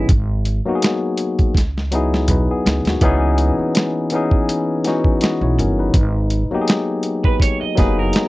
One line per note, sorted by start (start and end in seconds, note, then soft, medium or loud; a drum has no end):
0.00 0.11 E3 medium
0.00 0.11 B3 medium
0.00 0.11 C#4 medium
0.00 0.10 D#4 medium
0.00 0.10 G4 medium
0.00 0.11 G#4 medium
0.09 0.58 G#1 medium
0.09 kick loud
0.09 closed hi-hat medium
0.45 closed hi-hat medium
0.65 1.55 F#3 medium
0.65 1.55 A#3 medium
0.65 1.56 B3 medium
0.65 1.56 D#4 medium
0.65 0.73 F#4 medium
0.65 muted upright bass stroke soft
0.75 1.60 G#4 medium
0.82 snare loud
0.82 closed hi-hat medium
1.17 closed hi-hat medium
1.39 kick medium
1.39 closed hi-hat soft
1.55 2.29 C#2 medium
1.55 kick medium
1.55 snare medium
1.55 closed hi-hat medium
1.78 snare soft
1.91 2.91 F#3 medium
1.91 2.28 B3 medium
1.91 2.29 D#4 medium
1.91 2.29 E4 medium
1.91 2.30 G#4 medium
1.91 closed hi-hat medium
2.14 snare medium
2.28 2.46 B1 medium
2.28 2.48 D#4 medium
2.28 2.48 B4 medium
2.28 closed hi-hat medium
2.28 mid tom medium
2.51 2.84 B3 medium
2.51 2.84 G#4 medium
2.66 2.83 C#2 medium
2.66 snare loud
2.66 closed hi-hat medium
2.85 3.00 D#2 medium
2.85 3.21 A#3 soft
2.85 3.21 F#4 medium
2.85 snare medium
2.85 closed hi-hat soft
3.01 3.51 C#2 loud
3.01 4.01 E3 loud
3.01 4.01 B3 loud
3.01 4.02 C#4 loud
3.01 4.02 D#4 loud
3.01 4.03 G#4 loud
3.01 kick loud
3.01 closed hi-hat medium
3.38 closed hi-hat medium
3.59 muted upright bass stroke soft
3.75 snare loud
3.75 closed hi-hat medium
4.10 4.78 E3 medium
4.10 4.78 B3 medium
4.10 4.79 C#4 medium
4.10 closed hi-hat medium
4.15 4.79 D#4 medium
4.15 4.80 G#4 medium
4.31 kick medium
4.49 closed hi-hat medium
4.84 5.94 E3 medium
4.84 5.95 B3 medium
4.84 5.22 C#4 medium
4.84 5.22 D#4 medium
4.84 5.21 F#4 medium
4.84 snare soft
4.84 closed hi-hat medium
5.04 kick medium
5.21 5.41 F#4 medium
5.21 5.41 D#5 medium
5.21 snare loud
5.21 closed hi-hat medium
5.41 5.56 B1 medium
5.41 5.58 E4 medium
5.41 5.58 C#5 medium
5.58 5.90 G1 loud
5.58 5.78 C#4 soft
5.58 5.77 A#4 medium
5.58 closed hi-hat medium
5.79 6.13 D#4 medium
5.79 6.13 B4 medium
5.94 6.44 G#1 loud
5.94 kick loud
5.94 closed hi-hat medium
6.30 closed hi-hat medium
6.51 7.65 F#3 medium
6.51 7.66 A#3 medium
6.51 7.66 B3 medium
6.51 7.67 D#4 medium
6.51 6.59 G4 medium
6.51 muted upright bass stroke soft
6.61 7.71 G#4 medium
6.68 snare loud
6.68 closed hi-hat medium
7.03 closed hi-hat medium
7.24 7.40 B4 medium
7.24 kick medium
7.40 7.60 C#5 medium
7.40 kick medium
7.40 closed hi-hat medium
7.61 7.76 D#5 medium
7.61 muted upright bass stroke soft
7.75 8.09 F#1 medium
7.75 8.28 F#3 medium
7.75 8.28 A#3 medium
7.75 8.28 B3 medium
7.75 8.28 D#4 medium
7.75 7.96 B4 medium
7.75 kick medium
7.75 closed hi-hat medium
7.79 8.28 G#4 medium
7.79 snare soft
7.99 8.28 A#4 medium
8.13 snare loud
8.13 closed hi-hat medium